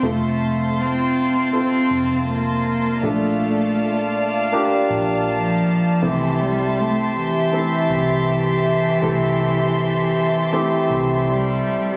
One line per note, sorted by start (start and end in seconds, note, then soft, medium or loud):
0.00 1.87 F1 medium
0.00 1.46 A3 medium
0.00 1.46 C4 soft
0.00 5.99 F4 medium
0.00 2.99 C5 soft
0.00 11.97 A5 medium
0.00 3.01 C6 medium
0.04 0.82 A3 medium
0.04 1.46 F4 soft
0.04 1.46 A4 medium
0.81 1.54 C4 medium
1.53 2.96 C4 medium
1.53 2.25 C4 medium
1.53 2.96 F4 soft
1.53 2.96 A4 medium
1.53 2.97 C5 medium
1.91 2.99 F1 medium
2.29 3.07 A#3 medium
3.03 4.87 A#1 medium
3.03 4.12 A#2 soft
3.03 4.46 A3 medium
3.03 4.54 A3 medium
3.03 4.46 D4 medium
3.03 4.46 F4 soft
3.03 4.46 A4 medium
3.03 6.01 D5 medium
3.03 6.01 F5 medium
4.52 5.95 A#3 medium
4.52 5.96 D4 medium
4.52 5.96 F4 medium
4.52 5.96 G4 medium
4.90 5.62 A#1 medium
5.29 6.06 F3 medium
6.02 7.87 C2 medium
6.02 7.11 C3 soft
6.02 6.43 E3 medium
6.02 7.45 A3 medium
6.02 7.45 C4 medium
6.02 7.46 E4 soft
6.02 11.97 G4 medium
6.02 7.46 G4 medium
6.02 11.97 E5 medium
6.02 11.97 C6 medium
6.41 6.81 G3 medium
6.79 7.18 A3 medium
7.17 11.29 E3 medium
7.52 8.95 A3 medium
7.52 8.96 C4 medium
7.52 8.96 E4 medium
7.52 8.96 A4 medium
7.90 8.99 C2 medium
9.02 10.86 C2 medium
9.02 10.12 C3 medium
9.02 10.45 A3 medium
9.02 10.45 C4 medium
9.02 10.46 E4 medium
9.02 10.46 A4 medium
10.53 11.95 A3 medium
10.53 11.96 C4 medium
10.53 11.96 E4 medium
10.53 11.96 G4 medium
10.90 11.62 C2 medium
11.30 11.97 G3 medium